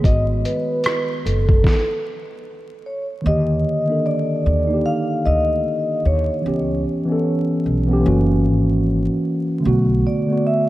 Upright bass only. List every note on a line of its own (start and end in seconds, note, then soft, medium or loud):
0.05 0.42 G#1 medium
1.26 1.63 F#1 medium
3.26 3.63 D#2 loud
4.46 4.83 D#2 medium
5.26 5.63 D2 medium
6.05 6.29 D#2 medium
6.46 6.83 C#2 medium
7.66 8.03 B1 medium
8.06 8.45 F#1 loud
8.45 9.06 G#1 medium
9.65 10.02 B1 medium